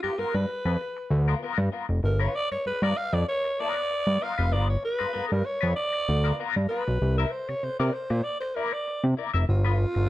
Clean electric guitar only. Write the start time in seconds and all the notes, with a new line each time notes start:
0.03 B3 F4 A#4
0.18 B3 F4 A#4
0.49 muted clean electric guitar stroke
0.65 B3 F4 B4
0.80 muted clean electric guitar stroke
0.97 muted clean electric guitar stroke
1.28 B3 F4 A#4
1.43 B3 F4 A#4
1.72 B3 F4 A#4
2.03 muted clean electric guitar stroke
2.19 B3 F4 B4
2.35 muted clean electric guitar stroke
2.52 muted clean electric guitar stroke
2.66 muted clean electric guitar stroke
2.83 B3 F4 A#4
2.98 muted clean electric guitar stroke
3.13 muted clean electric guitar stroke
3.44 muted clean electric guitar stroke
3.60 B3 F4 A#4
3.76 muted clean electric guitar stroke
3.90 muted clean electric guitar stroke
4.06 muted clean electric guitar stroke
4.21 B3 F4 A#4
4.38 B3 F4 B4
4.51 B3 F4 A#4
4.68 muted clean electric guitar stroke
4.83 muted clean electric guitar stroke
4.99 B3 F4 A#4
5.13 B3 F4 A#4
5.44 muted clean electric guitar stroke
5.61 B3 F4 B4
5.76 muted clean electric guitar stroke
5.93 muted clean electric guitar stroke
6.24 B3 F4 A#4
6.40 B3 F4 A#4
6.56 muted clean electric guitar stroke
6.70 B3 F4 A#4
6.88 muted clean electric guitar stroke
7.02 muted clean electric guitar stroke
7.18 E4 A#4 E5
7.32 muted clean electric guitar stroke
7.49 muted clean electric guitar stroke
7.63 muted clean electric guitar stroke
7.80 E4 A#4 D5
7.94 muted clean electric guitar stroke
8.10 muted clean electric guitar stroke
8.42 muted clean electric guitar stroke
8.56 E4 A#4 D5
8.73 muted clean electric guitar stroke
8.88 muted clean electric guitar stroke
9.04 muted clean electric guitar stroke
9.17 E4 A#4 D5
9.34 E4 A#4 E5
9.48 muted clean electric guitar stroke
9.65 B3 F4 B4
9.79 muted clean electric guitar stroke
9.95 muted clean electric guitar stroke